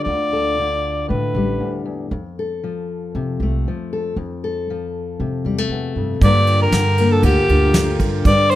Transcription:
0.00 0.58 D3 medium
0.00 1.39 F4 soft
0.00 0.32 A4 medium
0.00 1.04 D5 medium
0.06 1.05 D2 medium
0.06 1.59 D2 medium
0.33 2.39 A4 medium
0.59 2.13 D3 soft
1.09 2.12 A2 medium
1.09 1.34 D3 medium
1.09 1.82 B4 medium
1.34 1.59 A1 medium
1.34 2.13 G3 soft
1.60 1.85 D2 medium
1.86 2.11 E2 medium
2.11 3.10 F2 medium
2.11 4.14 F2 medium
2.39 3.91 A4 medium
2.64 3.67 F3 medium
3.15 3.67 C3 medium
3.15 3.39 F3 medium
3.40 3.65 C2 medium
3.40 4.15 A3 soft
3.68 4.70 F3 medium
3.93 4.15 A4 medium
4.16 5.15 F2 medium
4.16 5.71 F2 medium
4.44 6.19 A4 medium
4.70 6.20 F3 medium
5.20 6.19 C3 medium
5.20 5.44 F3 medium
5.45 5.68 E2 medium
5.45 5.58 G3 soft
5.58 6.22 A3 soft
5.69 5.96 E2 medium
5.69 5.93 F2 medium
5.96 6.22 F2 soft
5.96 6.19 G2 medium
6.21 6.70 G2 loud
6.21 8.23 G2 medium
6.21 6.72 D3 medium
6.21 8.55 F3 medium
6.21 8.55 A#3 medium
6.21 7.00 A#3 medium
6.21 7.50 F4 medium
6.21 8.55 G4 medium
6.21 6.59 D5 loud
6.21 kick loud
6.21 ride medium
6.26 8.24 A#4 medium
6.47 ride medium
6.62 7.13 A#4 loud
6.71 7.21 G2 medium
6.71 7.23 D3 medium
6.71 snare loud
6.71 ride medium
6.98 8.23 A#3 medium
6.98 ride medium
7.12 7.24 A4 medium
7.23 7.35 D2 loud
7.23 7.74 D3 medium
7.23 7.97 G4 medium
7.23 ride medium
7.49 7.97 D2 loud
7.49 8.29 F4 medium
7.49 ride medium
7.74 8.55 D3 medium
7.74 snare loud
7.74 ride medium
7.99 8.24 G2 medium
7.99 kick medium
7.99 ride medium
8.25 8.55 G2 loud
8.25 8.55 G2 medium
8.25 8.52 D5 loud
8.25 kick loud
8.25 ride medium
8.50 8.55 C5 loud
8.50 ride medium

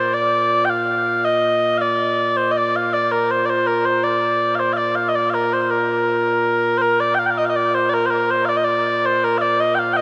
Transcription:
0.00 10.02 A#2 medium
0.00 0.14 C5 medium
0.14 0.65 D5 loud
0.65 0.70 G5 medium
0.70 1.25 F5 medium
1.25 1.78 D#5 loud
1.78 2.37 D5 medium
1.78 1.81 F5 medium
2.37 2.51 C5 medium
2.51 2.57 D#5 medium
2.57 2.76 D5 medium
2.76 2.93 F5 medium
2.93 3.12 D5 medium
3.12 3.31 A#4 medium
3.31 3.45 C5 medium
3.45 3.50 D5 medium
3.50 3.67 C5 medium
3.67 3.85 A#4 medium
3.85 4.04 C5 medium
4.04 4.55 D5 medium
4.55 4.59 F5 medium
4.59 4.73 C5 medium
4.73 4.77 F5 medium
4.77 4.95 D5 medium
4.95 5.09 F5 medium
5.09 5.15 D#5 medium
5.15 5.30 D5 medium
5.30 5.53 A#4 medium
5.30 5.34 F5 medium
5.53 5.61 C5 medium
5.61 5.70 C5 medium
5.70 6.78 A#4 medium
6.78 7.00 A#4 medium
6.78 6.82 C5 medium
7.00 7.15 D5 loud
7.15 7.19 G5 loud
7.19 7.26 F5 loud
7.26 7.30 G5 medium
7.30 7.38 F5 medium
7.38 7.45 D#5 medium
7.45 7.50 F5 medium
7.50 7.56 D#5 medium
7.56 7.75 D5 loud
7.75 7.89 C5 medium
7.89 7.94 D5 medium
7.94 8.06 A#4 medium
8.06 8.10 C5 medium
8.10 8.31 A#4 medium
8.31 8.45 C5 loud
8.45 8.57 D5 loud
8.45 8.49 F5 loud
8.57 8.64 D#5 medium
8.64 9.06 D5 loud
9.06 9.24 C5 loud
9.24 9.38 A#4 medium
9.38 9.60 D5 loud
9.38 9.41 F5 loud
9.60 9.75 D#5 loud
9.75 9.79 G5 medium
9.79 9.93 F5 medium
9.93 10.02 D#5 loud
9.93 9.97 G5 loud

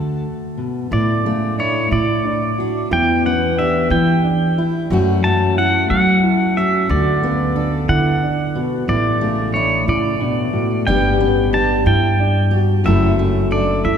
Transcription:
0.00 0.25 D3 soft
0.00 0.88 D3 medium
0.00 1.25 A3 soft
0.00 0.89 F#4 soft
0.00 0.23 A5 medium
0.57 0.91 B2 soft
0.91 1.90 A2 medium
0.91 1.88 A2 medium
0.91 1.25 E4 medium
0.91 1.55 D5 medium
1.25 1.58 C#3 medium
1.25 2.92 A3 soft
1.58 1.91 D4 medium
1.58 3.58 E4 medium
1.58 1.90 C#5 medium
1.91 2.88 A2 medium
1.91 2.24 E4 medium
1.91 2.88 D5 medium
1.91 muted steel-string acoustic guitar stroke medium
2.24 2.57 D4 medium
2.58 2.89 D4 soft
2.58 2.91 F#4 medium
2.91 3.87 E2 loud
2.91 3.90 E2 medium
2.91 3.24 E4 medium
2.91 3.26 G5 loud
3.24 4.88 B3 medium
3.24 3.57 C#4 medium
3.24 3.58 F#5 medium
3.58 3.91 D4 medium
3.58 4.87 G4 medium
3.58 3.93 E5 medium
3.90 4.86 E3 medium
3.90 4.24 E4 medium
3.90 4.62 G5 medium
3.90 muted steel-string acoustic guitar stroke medium
4.24 4.57 D4 medium
4.58 4.91 E4 medium
4.58 4.87 E4 medium
4.90 5.86 F#2 medium
4.90 5.90 F#2 medium
4.90 6.86 F#3 medium
4.90 5.24 A3 medium
4.90 6.57 C#4 medium
4.90 5.23 F#4 medium
4.90 5.58 F#4 medium
5.24 7.23 A3 medium
5.24 5.57 C#4 medium
5.24 5.58 A5 medium
5.58 5.90 E4 medium
5.58 6.86 F#4 medium
5.58 5.89 F#5 loud
5.90 6.86 F#3 medium
5.90 6.23 F#4 medium
5.90 6.59 F#5 loud
5.90 muted steel-string acoustic guitar stroke medium
6.23 6.56 E4 medium
6.57 6.90 C#4 medium
6.57 6.88 F#4 medium
6.57 6.91 E5 medium
6.89 7.85 D2 loud
6.89 7.87 D3 medium
6.89 7.22 F#4 medium
6.89 7.92 D5 medium
7.22 7.55 C#3 medium
7.22 8.85 B3 medium
7.56 7.88 D4 medium
7.56 8.84 A4 medium
7.89 8.22 D3 medium
7.89 8.84 D3 medium
7.89 8.21 E4 medium
7.89 8.60 F#5 loud
8.23 8.55 D4 medium
8.55 8.88 B2 medium
8.55 8.88 F#4 medium
8.88 9.84 A1 medium
8.88 9.87 A2 medium
8.88 9.21 E4 medium
8.88 9.57 D5 medium
9.21 9.54 C#3 medium
9.21 10.87 A3 medium
9.54 9.87 D4 medium
9.54 10.87 E4 medium
9.54 9.85 C#5 medium
9.87 10.83 A2 medium
9.87 10.20 C#3 medium
9.87 10.20 E4 medium
9.87 10.84 D5 medium
10.20 10.53 B2 medium
10.20 10.53 D4 medium
10.53 10.86 A2 medium
10.53 10.86 F#4 medium
10.87 11.82 G1 loud
10.87 11.84 G2 medium
10.87 12.82 G3 medium
10.87 11.19 B3 medium
10.87 11.19 D4 medium
10.87 11.52 G4 medium
10.87 11.49 G5 loud
11.20 12.81 B3 medium
11.20 11.52 C#4 medium
11.53 11.86 D4 medium
11.53 12.50 G4 medium
11.53 11.84 A5 medium
11.86 12.81 G2 loud
11.86 12.19 E4 medium
11.86 12.57 G5 loud
11.86 muted steel-string acoustic guitar stroke medium
12.20 12.52 D4 medium
12.51 12.85 F#4 medium
12.51 12.81 G4 medium
12.84 13.80 F#1 medium
12.84 13.83 F#2 medium
12.84 13.98 F#3 medium
12.84 13.19 A3 medium
12.84 13.98 E4 medium
12.84 13.18 E4 medium
12.84 13.51 A4 medium
12.84 13.47 E5 medium
13.19 13.98 A3 medium
13.19 13.51 C#4 medium
13.51 13.84 D4 medium
13.51 13.98 A4 medium
13.51 13.82 D5 medium
13.84 13.98 F#2 medium
13.84 13.98 E4 medium
13.84 13.98 E5 loud
13.84 muted steel-string acoustic guitar stroke medium

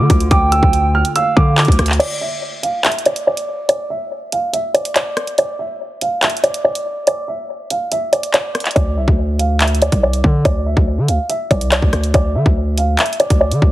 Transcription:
0.00 1.97 D3 medium
0.00 1.96 A3 medium
0.00 1.96 F4 medium
0.00 0.28 D6 loud
0.10 0.30 D2 loud
0.10 kick loud
0.10 closed hi-hat medium
0.20 closed hi-hat medium
0.31 0.61 D2 loud
0.31 1.11 G5 loud
0.31 0.49 D6 medium
0.31 kick loud
0.31 closed hi-hat medium
0.52 0.92 E6 medium
0.52 closed hi-hat medium
0.63 1.03 D2 loud
0.63 kick medium
0.73 closed hi-hat medium
0.95 1.13 F6 medium
1.05 closed hi-hat medium
1.15 1.55 F5 medium
1.15 1.34 E6 loud
1.15 closed hi-hat medium
1.37 1.67 D3 loud
1.37 1.55 D6 medium
1.37 kick loud
1.58 1.98 D6 medium
1.58 clap loud
1.58 closed hi-hat medium
1.65 1.78 D2 loud
1.65 kick medium
1.65 closed hi-hat medium
1.72 closed hi-hat medium
1.79 1.99 D2 loud
1.79 cross-stick medium
1.79 closed hi-hat medium
1.86 clap medium
1.86 closed hi-hat medium
1.93 closed hi-hat medium
1.99 2.18 D5 medium
1.99 closed hi-hat medium
1.99 crash medium
2.21 2.61 E5 medium
2.63 2.81 F5 medium
2.63 closed hi-hat medium
2.85 3.03 E5 medium
2.85 clap loud
2.85 closed hi-hat medium
2.92 closed hi-hat medium
2.99 closed hi-hat medium
3.06 3.24 D5 medium
3.06 closed hi-hat medium
3.16 closed hi-hat medium
3.27 3.67 D5 medium
3.37 closed hi-hat medium
3.69 3.87 D5 medium
3.69 closed hi-hat medium
3.90 4.30 E5 medium
4.32 4.50 F5 medium
4.32 closed hi-hat medium
4.53 4.71 E5 medium
4.53 closed hi-hat medium
4.74 4.92 D5 medium
4.74 closed hi-hat medium
4.85 closed hi-hat medium
4.96 5.36 D5 medium
4.96 clap loud
4.96 closed hi-hat medium
5.17 cross-stick medium
5.17 closed hi-hat medium
5.27 closed hi-hat medium
5.38 5.56 D5 medium
5.38 closed hi-hat medium
5.59 5.99 E5 medium
6.01 6.20 F5 medium
6.01 closed hi-hat medium
6.23 6.41 E5 medium
6.23 clap loud
6.23 closed hi-hat medium
6.30 closed hi-hat medium
6.37 closed hi-hat medium
6.43 6.62 D5 medium
6.43 closed hi-hat medium
6.54 closed hi-hat medium
6.64 7.04 D5 medium
6.75 closed hi-hat medium
7.07 7.25 D5 medium
7.07 closed hi-hat medium
7.28 7.68 E5 medium
7.70 7.89 F5 medium
7.70 closed hi-hat medium
7.92 8.10 E5 loud
7.92 closed hi-hat medium
8.13 8.31 D5 medium
8.13 closed hi-hat medium
8.23 closed hi-hat medium
8.34 8.74 D5 medium
8.34 clap loud
8.34 closed hi-hat medium
8.55 cross-stick medium
8.55 closed hi-hat medium
8.60 closed hi-hat medium
8.66 clap medium
8.66 closed hi-hat medium
8.71 closed hi-hat medium
8.76 8.99 D2 loud
8.76 8.94 D5 medium
8.76 kick loud
8.76 closed hi-hat medium
8.97 9.07 C2 loud
8.97 9.37 E5 medium
9.08 9.89 D2 loud
9.08 kick medium
9.39 9.57 F5 medium
9.39 closed hi-hat medium
9.60 9.79 E5 medium
9.60 clap loud
9.60 closed hi-hat medium
9.68 closed hi-hat medium
9.75 closed hi-hat medium
9.82 10.00 D5 medium
9.82 closed hi-hat medium
9.92 10.23 C2 loud
9.92 kick loud
9.92 closed hi-hat medium
10.03 10.43 D5 medium
10.13 closed hi-hat medium
10.24 10.44 D3 loud
10.24 kick loud
10.45 10.75 D2 loud
10.45 10.63 D5 medium
10.45 kick loud
10.45 closed hi-hat medium
10.66 11.06 E5 medium
10.77 10.99 D2 loud
10.77 kick medium
10.98 11.10 D3 loud
11.08 11.18 D2 loud
11.08 11.27 F5 medium
11.08 closed hi-hat medium
11.29 11.48 E5 medium
11.29 closed hi-hat medium
11.51 11.81 C2 loud
11.51 11.69 D5 medium
11.51 kick loud
11.51 closed hi-hat medium
11.61 closed hi-hat medium
11.72 12.12 D5 medium
11.72 clap loud
11.72 closed hi-hat medium
11.82 11.93 D2 loud
11.82 kick medium
11.93 12.13 D2 loud
11.93 cross-stick medium
11.93 closed hi-hat medium
12.04 closed hi-hat medium
12.14 12.37 D2 loud
12.14 12.32 D5 medium
12.14 kick loud
12.14 closed hi-hat medium
12.35 12.45 D3 medium
12.35 12.75 E5 medium
12.46 12.97 D2 loud
12.46 kick medium
12.78 12.96 F5 medium
12.78 closed hi-hat medium
12.99 13.17 E5 medium
12.99 clap loud
12.99 closed hi-hat medium
13.06 closed hi-hat medium
13.13 closed hi-hat medium
13.20 13.38 D5 medium
13.20 closed hi-hat medium
13.30 13.53 D2 loud
13.30 kick medium
13.30 closed hi-hat medium
13.41 13.72 D5 medium
13.51 13.61 D3 loud
13.51 closed hi-hat medium
13.62 13.72 D2 loud
13.62 kick loud

